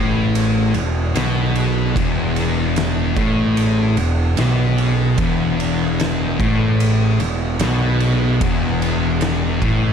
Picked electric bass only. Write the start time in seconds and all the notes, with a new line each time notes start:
Already playing: A1
0.74 E1
1.15 B1
1.96 E1
3.16 A1
3.97 E1
4.39 B1
5.17 E1
6.40 A1
7.20 E1
7.59 B1
8.41 E1
9.61 A1